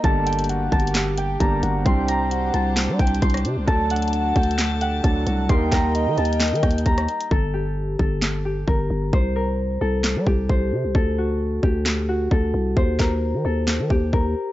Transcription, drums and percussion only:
0.04 kick loud
0.04 closed hi-hat medium
0.27 closed hi-hat medium
0.33 closed hi-hat medium
0.39 closed hi-hat medium
0.44 closed hi-hat medium
0.49 closed hi-hat medium
0.72 kick medium
0.72 closed hi-hat soft
0.72 open hi-hat medium
0.80 closed hi-hat medium
0.87 closed hi-hat medium
0.95 snare loud
0.95 clap loud
0.95 closed hi-hat medium
1.18 closed hi-hat medium
1.40 kick loud
1.40 closed hi-hat medium
1.63 closed hi-hat medium
1.86 kick loud
1.86 closed hi-hat medium
2.08 closed hi-hat medium
2.31 closed hi-hat medium
2.54 closed hi-hat medium
2.77 snare loud
2.77 clap medium
2.77 closed hi-hat medium
2.99 kick loud
2.99 closed hi-hat medium
3.07 closed hi-hat medium
3.15 closed hi-hat medium
3.22 kick loud
3.22 closed hi-hat medium
3.30 closed hi-hat medium
3.34 cross-stick medium
3.34 closed hi-hat medium
3.37 closed hi-hat medium
3.45 closed hi-hat medium
3.68 kick loud
3.68 closed hi-hat medium
3.90 closed hi-hat medium
3.96 closed hi-hat medium
4.02 closed hi-hat medium
4.08 closed hi-hat medium
4.13 closed hi-hat medium
4.36 kick medium
4.36 closed hi-hat soft
4.36 open hi-hat soft
4.43 closed hi-hat medium
4.51 closed hi-hat medium
4.58 snare loud
4.58 clap medium
4.58 closed hi-hat medium
4.81 closed hi-hat medium
5.04 kick loud
5.04 closed hi-hat medium
5.27 closed hi-hat medium
5.49 kick loud
5.49 closed hi-hat medium
5.72 kick loud
5.72 snare loud
5.72 clap medium
5.72 closed hi-hat medium
5.95 closed hi-hat medium
6.18 closed hi-hat soft
6.25 closed hi-hat medium
6.33 closed hi-hat medium
6.40 snare loud
6.40 clap loud
6.40 closed hi-hat medium
6.48 closed hi-hat medium
6.55 closed hi-hat medium
6.63 kick loud
6.63 cross-stick medium
6.63 closed hi-hat medium
6.71 closed hi-hat medium
6.78 closed hi-hat medium
6.86 kick loud
6.86 closed hi-hat medium
6.98 cross-stick medium
6.98 closed hi-hat medium
7.08 closed hi-hat soft
7.08 open hi-hat medium
7.21 closed hi-hat medium
7.31 kick loud
7.99 kick medium
8.22 snare loud
8.22 clap medium
8.68 kick loud
9.13 kick loud
10.04 snare loud
10.04 clap medium
10.27 kick loud
10.49 kick medium
10.95 kick loud
11.63 kick medium
11.86 snare loud
11.86 clap medium
12.31 kick loud
12.77 kick loud
12.99 kick loud
12.99 snare loud
12.99 clap medium
13.68 snare loud
13.68 clap loud
13.90 kick loud
14.13 kick loud

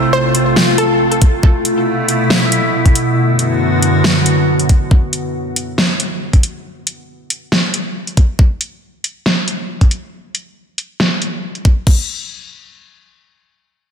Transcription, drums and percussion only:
0.35 closed hi-hat medium
0.56 snare loud
0.78 closed hi-hat medium
1.12 closed hi-hat soft
1.22 kick loud
1.22 closed hi-hat medium
1.43 kick loud
1.65 closed hi-hat medium
2.08 closed hi-hat medium
2.30 snare loud
2.52 closed hi-hat medium
2.86 kick medium
2.86 closed hi-hat soft
2.95 closed hi-hat medium
3.39 closed hi-hat medium
3.83 closed hi-hat medium
4.04 snare loud
4.26 closed hi-hat medium
4.59 closed hi-hat soft
4.69 kick loud
4.69 closed hi-hat medium
4.91 kick loud
5.13 closed hi-hat medium
5.56 closed hi-hat medium
5.78 snare loud
6.00 closed hi-hat medium
6.33 kick medium
6.33 closed hi-hat soft
6.43 closed hi-hat medium
6.87 closed hi-hat medium
7.30 closed hi-hat medium
7.52 snare loud
7.74 closed hi-hat medium
8.07 closed hi-hat soft
8.17 kick medium
8.17 closed hi-hat medium
8.39 kick loud
8.61 closed hi-hat medium
9.04 closed hi-hat medium
9.26 snare loud
9.48 closed hi-hat medium
9.81 kick medium
9.81 closed hi-hat soft
9.91 closed hi-hat medium
10.35 closed hi-hat medium
10.78 closed hi-hat medium
11.00 snare loud
11.22 closed hi-hat medium
11.55 closed hi-hat soft
11.65 kick medium
11.65 closed hi-hat medium
11.87 kick loud
11.87 crash medium

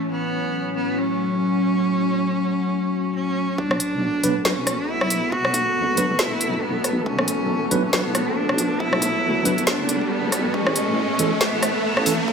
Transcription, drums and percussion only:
3.58 kick loud
3.71 cross-stick medium
3.80 closed hi-hat medium
4.23 closed hi-hat medium
4.45 snare loud
4.67 cross-stick medium
4.67 closed hi-hat medium
5.01 kick medium
5.01 cross-stick medium
5.10 closed hi-hat medium
5.32 kick loud
5.45 cross-stick medium
5.54 kick loud
5.54 closed hi-hat medium
5.97 closed hi-hat medium
6.19 snare loud
6.41 closed hi-hat medium
6.54 kick medium
6.84 cross-stick soft
6.84 closed hi-hat medium
7.06 kick loud
7.19 cross-stick medium
7.28 closed hi-hat medium
7.71 closed hi-hat medium
7.93 snare loud
8.15 cross-stick medium
8.15 closed hi-hat medium
8.49 kick medium
8.49 cross-stick medium
8.58 closed hi-hat medium
8.80 kick loud
8.93 cross-stick medium
9.02 kick loud
9.02 closed hi-hat medium
9.45 closed hi-hat medium
9.58 closed hi-hat soft
9.67 snare loud
9.89 closed hi-hat medium
10.01 kick medium
10.32 cross-stick medium
10.32 closed hi-hat medium
10.54 kick loud
10.67 cross-stick medium
10.76 closed hi-hat medium
11.19 closed hi-hat medium
11.41 snare loud
11.63 cross-stick medium
11.63 closed hi-hat medium
11.97 kick medium
11.97 cross-stick medium
12.06 open hi-hat medium
12.28 kick loud

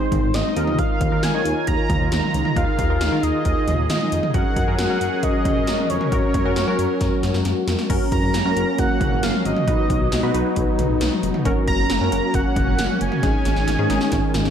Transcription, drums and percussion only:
0.12 kick loud
0.12 closed hi-hat medium
0.12 mid tom loud
0.34 snare loud
0.34 closed hi-hat medium
0.56 closed hi-hat medium
0.67 mid tom medium
0.79 kick loud
0.79 closed hi-hat medium
1.01 kick medium
1.01 closed hi-hat medium
1.23 snare loud
1.23 closed hi-hat medium
1.45 closed hi-hat medium
1.67 kick medium
1.67 closed hi-hat medium
1.90 kick loud
1.90 closed hi-hat medium
1.90 mid tom medium
2.12 snare loud
2.12 closed hi-hat medium
2.23 mid tom medium
2.34 closed hi-hat medium
2.45 mid tom medium
2.56 kick loud
2.56 closed hi-hat medium
2.79 kick medium
2.79 closed hi-hat medium
3.01 snare loud
3.01 closed hi-hat medium
3.23 closed hi-hat medium
3.45 kick medium
3.45 closed hi-hat medium
3.68 closed hi-hat medium
3.68 mid tom loud
3.90 snare loud
3.90 closed hi-hat medium
4.01 mid tom medium
4.12 closed hi-hat medium
4.23 mid tom medium
4.34 kick loud
4.34 closed hi-hat medium
4.56 kick medium
4.56 closed hi-hat medium
4.79 snare loud
4.79 closed hi-hat medium
5.01 closed hi-hat medium
5.23 kick medium
5.23 closed hi-hat medium
5.45 kick loud
5.45 closed hi-hat medium
5.45 mid tom medium
5.67 snare loud
5.67 closed hi-hat medium
5.79 mid tom medium
5.90 closed hi-hat medium
6.01 mid tom loud
6.12 kick loud
6.12 closed hi-hat medium
6.34 kick medium
6.34 closed hi-hat medium
6.34 mid tom medium
6.56 snare loud
6.56 closed hi-hat medium
6.79 closed hi-hat medium
7.01 kick medium
7.01 snare medium
7.01 closed hi-hat medium
7.23 snare medium
7.23 closed hi-hat medium
7.34 snare medium
7.45 snare medium
7.45 closed hi-hat medium
7.68 snare loud
7.68 closed hi-hat medium
7.79 snare medium
7.90 kick loud
7.90 closed hi-hat medium
7.90 crash medium
8.12 kick medium
8.12 closed hi-hat medium
8.34 snare loud
8.34 closed hi-hat medium
8.57 closed hi-hat medium
8.78 kick medium
8.78 closed hi-hat medium
9.01 kick loud
9.01 closed hi-hat medium
9.01 mid tom loud
9.23 snare loud
9.23 closed hi-hat medium
9.34 mid tom medium
9.45 closed hi-hat medium
9.56 mid tom medium
9.68 kick loud
9.68 closed hi-hat medium
9.90 kick medium
9.90 closed hi-hat medium
10.12 snare loud
10.12 closed hi-hat medium
10.35 closed hi-hat medium
10.56 kick medium
10.56 closed hi-hat medium
10.79 closed hi-hat medium
10.79 mid tom loud
11.01 snare loud
11.01 closed hi-hat medium
11.12 mid tom medium
11.23 closed hi-hat medium
11.34 mid tom medium
11.45 kick loud
11.45 closed hi-hat medium
11.68 kick medium
11.68 closed hi-hat medium
11.90 snare loud
11.90 closed hi-hat medium
12.12 closed hi-hat medium
12.34 kick medium
12.34 closed hi-hat medium
12.56 kick loud
12.56 closed hi-hat medium
12.56 mid tom medium
12.79 snare loud
12.79 closed hi-hat medium
12.90 mid tom medium
13.01 closed hi-hat medium
13.12 mid tom loud
13.23 kick loud
13.23 snare medium
13.23 closed hi-hat medium
13.45 snare medium
13.45 closed hi-hat medium
13.56 snare medium
13.68 snare medium
13.68 closed hi-hat medium
13.90 snare medium
13.90 closed hi-hat medium
14.01 snare medium
14.12 kick medium
14.12 snare medium
14.12 closed hi-hat medium
14.34 snare medium
14.34 closed hi-hat medium
14.45 snare medium

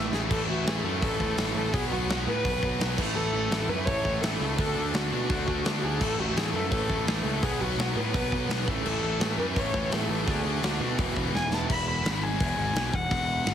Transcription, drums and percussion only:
0.13 snare medium
0.31 kick loud
0.31 crash loud
0.67 snare loud
0.67 open hi-hat medium
1.02 kick loud
1.02 open hi-hat medium
1.20 kick medium
1.38 snare loud
1.38 open hi-hat medium
1.74 kick loud
1.74 open hi-hat medium
2.10 snare loud
2.10 open hi-hat medium
2.45 kick loud
2.45 open hi-hat medium
2.63 kick medium
2.81 snare loud
2.81 open hi-hat medium
2.98 kick loud
2.98 crash loud
3.51 snare loud
3.51 open hi-hat medium
3.87 kick loud
3.87 open hi-hat medium
4.05 kick medium
4.23 snare loud
4.23 open hi-hat medium
4.58 kick loud
4.58 open hi-hat medium
4.94 snare loud
4.94 open hi-hat medium
5.30 kick loud
5.30 open hi-hat medium
5.48 kick medium
5.65 snare loud
5.65 open hi-hat medium
6.01 kick loud
6.01 crash loud
6.37 snare loud
6.37 open hi-hat medium
6.72 kick loud
6.72 open hi-hat medium
6.90 kick medium
7.07 snare loud
7.07 open hi-hat medium
7.43 kick loud
7.43 open hi-hat medium
7.79 snare loud
7.79 open hi-hat medium
8.14 kick loud
8.14 open hi-hat medium
8.32 kick medium
8.50 snare loud
8.50 open hi-hat medium
8.68 kick loud
8.86 crash loud
9.20 snare loud
9.20 open hi-hat medium
9.56 kick loud
9.56 open hi-hat medium
9.74 kick medium
9.92 snare loud
9.92 open hi-hat medium
10.27 kick loud
10.27 open hi-hat medium
10.63 snare loud
10.63 open hi-hat medium
10.99 kick loud
10.99 open hi-hat medium
11.16 kick medium
11.35 snare medium
11.53 snare medium
11.70 kick loud
11.70 crash loud
12.05 snare loud
12.05 open hi-hat medium
12.40 kick loud
12.40 open hi-hat medium
12.76 snare loud
12.76 open hi-hat medium
12.94 kick medium
13.11 kick loud
13.11 open hi-hat medium
13.46 snare loud
13.46 open hi-hat medium

